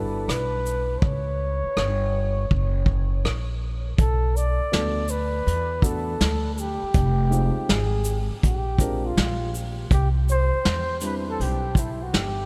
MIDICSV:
0, 0, Header, 1, 6, 480
1, 0, Start_track
1, 0, Tempo, 740741
1, 660, Time_signature, 4, 2, 24, 8
1, 8071, End_track
2, 0, Start_track
2, 0, Title_t, "Flugelhorn"
2, 0, Program_c, 0, 56
2, 0, Note_on_c, 0, 69, 86
2, 187, Note_on_c, 0, 71, 109
2, 197, Note_off_c, 0, 69, 0
2, 636, Note_on_c, 0, 72, 59
2, 646, Note_off_c, 0, 71, 0
2, 664, Note_on_c, 0, 73, 92
2, 674, Note_off_c, 0, 72, 0
2, 2102, Note_off_c, 0, 73, 0
2, 2585, Note_on_c, 0, 69, 98
2, 2828, Note_on_c, 0, 74, 94
2, 2838, Note_off_c, 0, 69, 0
2, 3308, Note_on_c, 0, 71, 108
2, 3318, Note_off_c, 0, 74, 0
2, 3786, Note_on_c, 0, 69, 85
2, 3795, Note_off_c, 0, 71, 0
2, 4232, Note_off_c, 0, 69, 0
2, 4244, Note_on_c, 0, 69, 63
2, 4273, Note_on_c, 0, 67, 91
2, 4283, Note_off_c, 0, 69, 0
2, 4992, Note_on_c, 0, 68, 81
2, 5001, Note_off_c, 0, 67, 0
2, 5311, Note_off_c, 0, 68, 0
2, 5469, Note_on_c, 0, 67, 82
2, 5870, Note_on_c, 0, 65, 75
2, 5880, Note_off_c, 0, 67, 0
2, 6187, Note_off_c, 0, 65, 0
2, 6433, Note_on_c, 0, 67, 86
2, 6537, Note_off_c, 0, 67, 0
2, 6680, Note_on_c, 0, 72, 110
2, 7124, Note_off_c, 0, 72, 0
2, 7162, Note_on_c, 0, 71, 82
2, 7228, Note_off_c, 0, 71, 0
2, 7318, Note_on_c, 0, 69, 89
2, 7401, Note_on_c, 0, 67, 87
2, 7410, Note_off_c, 0, 69, 0
2, 7639, Note_on_c, 0, 64, 76
2, 7648, Note_off_c, 0, 67, 0
2, 7793, Note_on_c, 0, 66, 85
2, 7802, Note_off_c, 0, 64, 0
2, 7880, Note_on_c, 0, 67, 101
2, 7889, Note_off_c, 0, 66, 0
2, 8071, Note_off_c, 0, 67, 0
2, 8071, End_track
3, 0, Start_track
3, 0, Title_t, "Upright piano"
3, 0, Program_c, 1, 0
3, 0, Note_on_c, 1, 55, 61
3, 0, Note_on_c, 1, 62, 59
3, 0, Note_on_c, 1, 64, 55
3, 0, Note_on_c, 1, 66, 52
3, 0, Note_on_c, 1, 71, 66
3, 625, Note_off_c, 1, 55, 0
3, 625, Note_off_c, 1, 62, 0
3, 626, Note_off_c, 1, 64, 0
3, 627, Note_off_c, 1, 66, 0
3, 628, Note_off_c, 1, 71, 0
3, 3056, Note_on_c, 1, 57, 59
3, 3058, Note_on_c, 1, 59, 59
3, 3060, Note_on_c, 1, 62, 54
3, 3062, Note_on_c, 1, 66, 62
3, 3062, Note_on_c, 1, 69, 74
3, 3248, Note_off_c, 1, 57, 0
3, 3249, Note_off_c, 1, 59, 0
3, 3251, Note_off_c, 1, 62, 0
3, 3252, Note_off_c, 1, 66, 0
3, 3252, Note_off_c, 1, 69, 0
3, 3773, Note_on_c, 1, 57, 69
3, 3776, Note_on_c, 1, 59, 64
3, 3776, Note_on_c, 1, 62, 61
3, 3778, Note_on_c, 1, 66, 60
3, 3780, Note_on_c, 1, 69, 80
3, 3967, Note_off_c, 1, 57, 0
3, 3968, Note_off_c, 1, 62, 0
3, 3969, Note_off_c, 1, 59, 0
3, 3970, Note_off_c, 1, 66, 0
3, 3970, Note_off_c, 1, 69, 0
3, 4732, Note_on_c, 1, 56, 59
3, 4734, Note_on_c, 1, 60, 57
3, 4734, Note_on_c, 1, 63, 64
3, 4738, Note_on_c, 1, 65, 59
3, 4738, Note_on_c, 1, 67, 71
3, 5039, Note_off_c, 1, 56, 0
3, 5040, Note_off_c, 1, 60, 0
3, 5040, Note_off_c, 1, 63, 0
3, 5042, Note_off_c, 1, 65, 0
3, 5042, Note_off_c, 1, 67, 0
3, 5697, Note_on_c, 1, 56, 63
3, 5698, Note_on_c, 1, 60, 59
3, 5702, Note_on_c, 1, 62, 63
3, 5703, Note_on_c, 1, 65, 54
3, 5705, Note_on_c, 1, 70, 73
3, 5889, Note_off_c, 1, 56, 0
3, 5890, Note_off_c, 1, 60, 0
3, 5892, Note_off_c, 1, 62, 0
3, 5892, Note_off_c, 1, 65, 0
3, 5893, Note_off_c, 1, 70, 0
3, 7137, Note_on_c, 1, 55, 65
3, 7141, Note_on_c, 1, 60, 59
3, 7143, Note_on_c, 1, 62, 55
3, 7144, Note_on_c, 1, 64, 54
3, 7148, Note_on_c, 1, 71, 68
3, 7505, Note_off_c, 1, 55, 0
3, 7507, Note_off_c, 1, 60, 0
3, 7507, Note_off_c, 1, 62, 0
3, 7508, Note_off_c, 1, 64, 0
3, 7510, Note_off_c, 1, 71, 0
3, 8071, End_track
4, 0, Start_track
4, 0, Title_t, "Upright bass"
4, 0, Program_c, 2, 32
4, 0, Note_on_c, 2, 31, 90
4, 159, Note_off_c, 2, 31, 0
4, 182, Note_on_c, 2, 35, 85
4, 637, Note_off_c, 2, 35, 0
4, 662, Note_on_c, 2, 37, 94
4, 1039, Note_off_c, 2, 37, 0
4, 1144, Note_on_c, 2, 31, 98
4, 1599, Note_off_c, 2, 31, 0
4, 1626, Note_on_c, 2, 30, 102
4, 2080, Note_off_c, 2, 30, 0
4, 2104, Note_on_c, 2, 34, 91
4, 2558, Note_off_c, 2, 34, 0
4, 2583, Note_on_c, 2, 35, 89
4, 2959, Note_off_c, 2, 35, 0
4, 3063, Note_on_c, 2, 38, 87
4, 3518, Note_off_c, 2, 38, 0
4, 3544, Note_on_c, 2, 40, 95
4, 3998, Note_off_c, 2, 40, 0
4, 4022, Note_on_c, 2, 38, 92
4, 4399, Note_off_c, 2, 38, 0
4, 4501, Note_on_c, 2, 29, 109
4, 4878, Note_off_c, 2, 29, 0
4, 4983, Note_on_c, 2, 32, 91
4, 5359, Note_off_c, 2, 32, 0
4, 5467, Note_on_c, 2, 34, 91
4, 5920, Note_off_c, 2, 34, 0
4, 5943, Note_on_c, 2, 34, 94
4, 6398, Note_off_c, 2, 34, 0
4, 6422, Note_on_c, 2, 36, 101
4, 6799, Note_off_c, 2, 36, 0
4, 6904, Note_on_c, 2, 40, 90
4, 7358, Note_off_c, 2, 40, 0
4, 7384, Note_on_c, 2, 35, 85
4, 7838, Note_off_c, 2, 35, 0
4, 7863, Note_on_c, 2, 31, 89
4, 8071, Note_off_c, 2, 31, 0
4, 8071, End_track
5, 0, Start_track
5, 0, Title_t, "Muted upright bass strokes"
5, 1061, Note_on_c, 9, 29, 42
5, 1126, Note_off_c, 9, 29, 0
5, 2978, Note_on_c, 9, 29, 43
5, 3043, Note_off_c, 9, 29, 0
5, 4424, Note_on_c, 9, 29, 47
5, 4488, Note_off_c, 9, 29, 0
5, 4902, Note_on_c, 9, 29, 43
5, 4967, Note_off_c, 9, 29, 0
5, 5383, Note_on_c, 9, 29, 44
5, 5448, Note_off_c, 9, 29, 0
5, 6820, Note_on_c, 9, 29, 49
5, 6884, Note_off_c, 9, 29, 0
5, 8071, End_track
6, 0, Start_track
6, 0, Title_t, "Drums"
6, 188, Note_on_c, 9, 42, 71
6, 189, Note_on_c, 9, 37, 96
6, 253, Note_off_c, 9, 37, 0
6, 253, Note_off_c, 9, 42, 0
6, 429, Note_on_c, 9, 82, 38
6, 493, Note_off_c, 9, 82, 0
6, 662, Note_on_c, 9, 36, 119
6, 727, Note_off_c, 9, 36, 0
6, 1146, Note_on_c, 9, 37, 102
6, 1211, Note_off_c, 9, 37, 0
6, 1626, Note_on_c, 9, 36, 81
6, 1691, Note_off_c, 9, 36, 0
6, 1854, Note_on_c, 9, 36, 90
6, 1918, Note_off_c, 9, 36, 0
6, 2107, Note_on_c, 9, 37, 101
6, 2172, Note_off_c, 9, 37, 0
6, 2580, Note_on_c, 9, 42, 89
6, 2582, Note_on_c, 9, 36, 112
6, 2645, Note_off_c, 9, 42, 0
6, 2647, Note_off_c, 9, 36, 0
6, 2830, Note_on_c, 9, 82, 42
6, 2895, Note_off_c, 9, 82, 0
6, 3065, Note_on_c, 9, 42, 60
6, 3066, Note_on_c, 9, 38, 102
6, 3130, Note_off_c, 9, 42, 0
6, 3131, Note_off_c, 9, 38, 0
6, 3294, Note_on_c, 9, 82, 57
6, 3359, Note_off_c, 9, 82, 0
6, 3548, Note_on_c, 9, 42, 81
6, 3613, Note_off_c, 9, 42, 0
6, 3773, Note_on_c, 9, 36, 90
6, 3784, Note_on_c, 9, 82, 57
6, 3838, Note_off_c, 9, 36, 0
6, 3849, Note_off_c, 9, 82, 0
6, 4021, Note_on_c, 9, 42, 69
6, 4022, Note_on_c, 9, 38, 102
6, 4086, Note_off_c, 9, 42, 0
6, 4087, Note_off_c, 9, 38, 0
6, 4264, Note_on_c, 9, 82, 40
6, 4329, Note_off_c, 9, 82, 0
6, 4495, Note_on_c, 9, 42, 89
6, 4500, Note_on_c, 9, 36, 126
6, 4560, Note_off_c, 9, 42, 0
6, 4565, Note_off_c, 9, 36, 0
6, 4746, Note_on_c, 9, 82, 44
6, 4811, Note_off_c, 9, 82, 0
6, 4984, Note_on_c, 9, 42, 67
6, 4985, Note_on_c, 9, 38, 118
6, 5048, Note_off_c, 9, 42, 0
6, 5050, Note_off_c, 9, 38, 0
6, 5213, Note_on_c, 9, 42, 51
6, 5213, Note_on_c, 9, 82, 56
6, 5278, Note_off_c, 9, 42, 0
6, 5278, Note_off_c, 9, 82, 0
6, 5465, Note_on_c, 9, 36, 83
6, 5466, Note_on_c, 9, 42, 89
6, 5530, Note_off_c, 9, 36, 0
6, 5531, Note_off_c, 9, 42, 0
6, 5693, Note_on_c, 9, 36, 84
6, 5701, Note_on_c, 9, 42, 60
6, 5701, Note_on_c, 9, 82, 56
6, 5757, Note_off_c, 9, 36, 0
6, 5766, Note_off_c, 9, 42, 0
6, 5766, Note_off_c, 9, 82, 0
6, 5944, Note_on_c, 9, 42, 74
6, 5945, Note_on_c, 9, 38, 104
6, 6009, Note_off_c, 9, 42, 0
6, 6010, Note_off_c, 9, 38, 0
6, 6186, Note_on_c, 9, 82, 45
6, 6251, Note_off_c, 9, 82, 0
6, 6419, Note_on_c, 9, 42, 94
6, 6421, Note_on_c, 9, 36, 117
6, 6484, Note_off_c, 9, 42, 0
6, 6486, Note_off_c, 9, 36, 0
6, 6667, Note_on_c, 9, 82, 46
6, 6731, Note_off_c, 9, 82, 0
6, 6902, Note_on_c, 9, 42, 67
6, 6903, Note_on_c, 9, 38, 98
6, 6966, Note_off_c, 9, 42, 0
6, 6968, Note_off_c, 9, 38, 0
6, 7133, Note_on_c, 9, 42, 55
6, 7133, Note_on_c, 9, 82, 52
6, 7198, Note_off_c, 9, 42, 0
6, 7198, Note_off_c, 9, 82, 0
6, 7390, Note_on_c, 9, 42, 88
6, 7455, Note_off_c, 9, 42, 0
6, 7614, Note_on_c, 9, 36, 88
6, 7626, Note_on_c, 9, 42, 55
6, 7626, Note_on_c, 9, 82, 51
6, 7679, Note_off_c, 9, 36, 0
6, 7691, Note_off_c, 9, 42, 0
6, 7691, Note_off_c, 9, 82, 0
6, 7866, Note_on_c, 9, 38, 98
6, 7866, Note_on_c, 9, 42, 69
6, 7931, Note_off_c, 9, 38, 0
6, 7931, Note_off_c, 9, 42, 0
6, 8071, End_track
0, 0, End_of_file